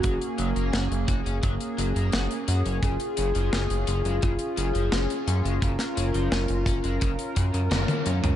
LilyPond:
<<
  \new Staff \with { instrumentName = "Soft synth lead" } { \time 4/4 \key cis \mixolydian \tempo 4 = 86 fis'4 r2. | gis'2 eis'8 gis'4 eis'8 | eis'2. r4 | }
  \new Staff \with { instrumentName = "Analog synth pad" } { \time 4/4 \key cis \mixolydian << { gis'1~ | gis'1 | ais'1 | } \\ { <ais cis'>1 | <cis' eis'>1~ | <cis' eis'>1 | } >> }
  \new Staff \with { instrumentName = "Overdriven electric guitar" } { \clef bass \time 4/4 \key cis \mixolydian fis16 r16 fis16 ais16 fis'16 r16 fis'16 cis'16 fis16 r16 fis16 ais16 fis'16 r16 fis'16 cis'16 | cis16 r16 cis16 eis16 cis'16 r16 cis'16 gis16 cis16 r16 cis16 eis16 cis'16 r16 cis'16 gis16 | cis16 r16 cis16 eis16 cis'16 r16 cis'16 gis16 cis16 r16 cis16 cis16 cis16 r16 cis'16 cis16 | }
  \new Staff \with { instrumentName = "Analog synth bass" } { \clef bass \time 4/4 \key cis \mixolydian fis,,16 r16 fis,,16 fis,,16 fis,,16 fis,,16 fis,,16 fis,,16 fis,,16 r16 fis,,16 fis,,16 fis,,16 r16 fis,16 fis,,16 | fis,,16 r16 fis,,16 fis,,16 fis,,16 fis,,16 fis,,16 fis,,16 fis,,16 r16 fis,,16 fis,,16 fis,,16 r16 fis,16 fis,,16 | fis,,16 r16 fis,,16 fis,,16 fis,,16 fis,,16 fis,,16 fis,,16 fis,,16 r16 fis,16 fis,16 fis,,16 r16 fis,16 cis,16 | }
  \new DrumStaff \with { instrumentName = "Drums" } \drummode { \time 4/4 <hh bd>16 hh16 hh16 hh16 <hh sn>16 hh16 <hh bd>16 hh16 <hh bd>16 hh16 hh16 hh16 <hh sn>16 hh16 hh16 hh16 | <hh bd>16 hh16 hh16 hh16 <hh sn>16 hh16 hh16 hh16 <hh bd>16 hh16 hh16 hh16 <hh sn>16 hh16 hh16 hh16 | <hh bd>16 <hh sn>16 hh16 hh16 <hh sn>16 hh16 <hh bd>16 hh16 <hh bd>16 hh16 <hh bd>16 hh16 <hh sn tommh>16 <hh tommh>16 hh16 <hh toml>16 | }
>>